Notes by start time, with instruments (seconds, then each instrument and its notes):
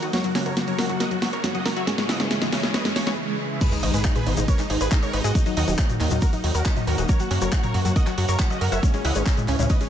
Already playing: riser
0.02 analog synth bass D#2, supersaw synth D#4, synth arpeggio sound F#4, closed hi-hat
0.13 synth arpeggio sound F#3, supersaw synth A#4 C#5, snare, closed hi-hat
0.24 synth arpeggio sound F#3, supersaw synth F#4, closed hi-hat
0.35 analog synth bass F#2, synth arpeggio sound C#4, supersaw synth F#4, snare, open hi-hat
0.46 analog synth bass F#1, synth arpeggio sound F#3, supersaw synth A#4 C#5, closed hi-hat
0.57 synth arpeggio sound F#3, supersaw synth F#4, snare, closed hi-hat
0.68 synth arpeggio sound F#3, supersaw synth A#4 C#5, closed hi-hat
0.79 analog synth bass F#2, synth arpeggio sound A#3, supersaw synth F#4, snare, open hi-hat
0.89 analog synth bass F#2, synth arpeggio sound F#3, supersaw synth F#4, closed hi-hat
1.00 supersaw synth F#4 D#5, synth arpeggio sound A#4, snare, closed hi-hat
1.11 synth arpeggio sound F#3, supersaw synth F#4, closed hi-hat
1.22 analog synth bass F#2, synth arpeggio sound F#4, supersaw synth F#4, snare, open hi-hat
1.33 analog synth bass F#2, synth arpeggio sound A#4, supersaw synth A#4 C#5, closed hi-hat
1.44 synth arpeggio sound F#3, supersaw synth F#4, snare, closed hi-hat
1.55 synth arpeggio sound F#3, supersaw synth F#4 D#5, closed hi-hat
1.66 analog synth bass F#2, supersaw synth F#4, synth arpeggio sound A#4, snare, open hi-hat
1.76 analog synth bass F#2, synth arpeggio sound F#4, supersaw synth C#5 E5, closed hi-hat
1.87 synth arpeggio sound G#3, supersaw synth C#4, snare, closed hi-hat
1.98 synth arpeggio sound G#3, supersaw synth C#4, snare, closed hi-hat
2.09 analog synth bass C#2, synth arpeggio sound E4, supersaw synth D#5 F#5, snare, open hi-hat
2.20 analog synth bass G#1, synth arpeggio sound G#3, supersaw synth C#4, snare, closed hi-hat
2.31 synth arpeggio sound G#3, supersaw synth C#4, snare, closed hi-hat
2.42 synth arpeggio sound G#3, snare, closed hi-hat
2.52 analog synth bass C#2, synth arpeggio sound C#4, supersaw synth C#4, snare, open hi-hat
2.63 analog synth bass C#2, synth arpeggio sound G#3, supersaw synth C#4, snare, closed hi-hat
2.74 supersaw synth B4 D#5, synth arpeggio sound C#5, snare, closed hi-hat, swell
2.85 synth arpeggio sound G#3, supersaw synth C#4, snare, closed hi-hat
2.96 analog synth bass C#2, supersaw synth C#4, synth arpeggio sound C#5, snare, open hi-hat
3.07 analog synth bass C#2, supersaw synth G#4 B4, synth arpeggio sound C#5, snare, closed hi-hat
3.61 synth arpeggio sound G#3, supersaw synth G#4 B4, synth pluck B4, kick, closed hi-hat, crash, impact, shaker
3.72 synth arpeggio sound G#3, supersaw synth D#4, synth pluck D#4, closed hi-hat, shaker
3.83 analog synth bass G#1, supersaw synth D#4, synth pluck D#4, synth arpeggio sound D#4, open hi-hat
3.94 analog synth bass G#2, synth arpeggio sound G#3, supersaw synth G#4 B4, synth pluck B4, closed hi-hat, shaker
4.05 synth arpeggio sound G#3, synth pluck D#4, supersaw synth D#4, kick, clap, closed hi-hat
4.16 synth arpeggio sound G#3, supersaw synth G#4 B4, synth pluck B4, closed hi-hat, mid tom, shaker
4.26 analog synth bass G#1, synth arpeggio sound B3, synth pluck D#4, supersaw synth D#4, open hi-hat
4.37 analog synth bass G#1, synth arpeggio sound G#3, supersaw synth D#4, synth pluck D#4, closed hi-hat, shaker
4.48 supersaw synth A#4 C#5, synth arpeggio sound B4, synth pluck C#5, kick, closed hi-hat, shaker
4.59 synth arpeggio sound G#3, supersaw synth D#4, synth pluck D#4, clap, closed hi-hat, shaker
4.70 analog synth bass G#1, synth pluck D#4, supersaw synth D#4, synth arpeggio sound G#4, open hi-hat
4.80 analog synth bass G#1, supersaw synth G#4 B4, synth pluck B4, synth arpeggio sound B4, closed hi-hat, shaker
4.92 synth arpeggio sound G#3, supersaw synth D#4, synth pluck D#4, kick, clap, closed hi-hat, shaker
5.02 synth arpeggio sound G#3, supersaw synth A#4 C#5, synth pluck C#5, closed hi-hat, shaker
5.13 analog synth bass G#1, synth pluck D#4, supersaw synth D#4, synth arpeggio sound B4, open hi-hat
5.24 analog synth bass G#2, supersaw synth F#4 D#5, synth arpeggio sound G#4, synth pluck D#5, closed hi-hat, shaker
5.35 synth arpeggio sound F#3, synth pluck D#4, supersaw synth D#4, kick, closed hi-hat, shaker
5.46 synth arpeggio sound F#3, synth pluck D#4, supersaw synth D#4, closed hi-hat, shaker
5.57 analog synth bass D#2, synth arpeggio sound D#4, supersaw synth F#4 D#5, synth pluck D#5, open hi-hat
5.68 analog synth bass D#1, synth arpeggio sound F#3, synth pluck D#4, supersaw synth D#4, closed hi-hat, shaker
5.79 synth arpeggio sound F#3, supersaw synth D#4, kick, clap, closed hi-hat
5.89 synth arpeggio sound F#3, closed hi-hat, mid tom, shaker
6.00 analog synth bass D#2, synth arpeggio sound A#3, synth pluck D#4, supersaw synth D#4, clap, open hi-hat
6.10 analog synth bass D#2, synth arpeggio sound F#3, synth pluck D#4, supersaw synth D#4, closed hi-hat, mid tom, shaker
6.21 supersaw synth F#4 A#4, synth pluck A#4, synth arpeggio sound A#4, kick, closed hi-hat, shaker
6.33 synth arpeggio sound F#3, synth pluck D#4, supersaw synth D#4, closed hi-hat, shaker
6.44 analog synth bass D#2, synth pluck D#4, supersaw synth D#4, synth arpeggio sound F#4, open hi-hat
6.55 analog synth bass D#2, supersaw synth F#4 A#4, synth pluck A#4, synth arpeggio sound A#4, closed hi-hat, shaker
6.65 synth arpeggio sound F#3, synth pluck D#4, supersaw synth D#4, kick, clap, closed hi-hat, shaker
6.76 synth arpeggio sound F#3, synth pluck D#4, supersaw synth D#4, closed hi-hat, mid tom, shaker
6.87 analog synth bass D#2, supersaw synth F#4 A#4, synth pluck A#4, synth arpeggio sound A#4, open hi-hat
6.98 analog synth bass D#1, synth pluck D#4, supersaw synth D#4, synth arpeggio sound F#4, closed hi-hat, shaker
7.09 synth arpeggio sound F#3, supersaw synth A#4 C#5, synth pluck C#5, kick, closed hi-hat, shaker
7.19 synth arpeggio sound F#3, synth pluck F#4, supersaw synth F#4, closed hi-hat, shaker
7.31 analog synth bass F#2, synth arpeggio sound C#4, supersaw synth F#4, synth pluck F#4, open hi-hat
7.41 analog synth bass F#1, synth arpeggio sound F#3, supersaw synth A#4 C#5, synth pluck C#5, closed hi-hat, shaker
7.52 synth arpeggio sound F#3, synth pluck F#4, supersaw synth F#4, kick, clap, closed hi-hat, shaker
7.63 synth arpeggio sound F#3, supersaw synth A#4 C#5, synth pluck C#5, closed hi-hat, mid tom, shaker
7.74 analog synth bass F#2, synth arpeggio sound A#3, synth pluck F#4, supersaw synth F#4, open hi-hat
7.85 analog synth bass F#2, synth arpeggio sound F#3, synth pluck F#4, supersaw synth F#4, closed hi-hat, shaker
7.96 supersaw synth F#4 D#5, synth arpeggio sound A#4, synth pluck D#5, kick, closed hi-hat, shaker
8.07 synth arpeggio sound F#3, synth pluck F#4, supersaw synth F#4, clap, closed hi-hat, shaker
8.18 analog synth bass F#2, supersaw synth F#4, synth pluck F#4, synth arpeggio sound F#4, open hi-hat
8.28 analog synth bass F#2, supersaw synth A#4 C#5, synth arpeggio sound A#4, synth pluck C#5, closed hi-hat, shaker
8.39 synth arpeggio sound F#3, synth pluck F#4, supersaw synth F#4, kick, clap, closed hi-hat, shaker
8.50 synth arpeggio sound F#3, supersaw synth F#4 D#5, synth pluck D#5, closed hi-hat, shaker
8.61 analog synth bass F#2, supersaw synth F#4, synth pluck F#4, synth arpeggio sound A#4, open hi-hat
8.72 analog synth bass F#1, synth arpeggio sound F#4, supersaw synth C#5 E5, synth pluck E5, closed hi-hat, shaker
8.83 synth arpeggio sound G#3, synth pluck C#4, supersaw synth C#4, kick, closed hi-hat, shaker
8.94 synth arpeggio sound G#3, synth pluck C#4, supersaw synth C#4, closed hi-hat, shaker
9.05 analog synth bass C#2, synth arpeggio sound E4, supersaw synth D#5 F#5, synth pluck F#5, open hi-hat
9.15 analog synth bass G#1, synth arpeggio sound G#3, synth pluck C#4, supersaw synth C#4, closed hi-hat, shaker
9.26 synth arpeggio sound G#3, synth pluck C#4, supersaw synth C#4, kick, clap, closed hi-hat, shaker
9.37 synth arpeggio sound G#3, closed hi-hat, mid tom, shaker
9.48 analog synth bass C#2, synth pluck C#4, synth arpeggio sound C#4, supersaw synth C#4, clap, open hi-hat
9.59 analog synth bass C#2, synth arpeggio sound G#3, synth pluck C#4, supersaw synth C#4, closed hi-hat, mid tom, shaker
9.69 supersaw synth B4 D#5, synth arpeggio sound C#5, synth pluck D#5, kick, closed hi-hat, shaker
9.81 synth arpeggio sound G#3, synth pluck C#4, supersaw synth C#4, closed hi-hat, shaker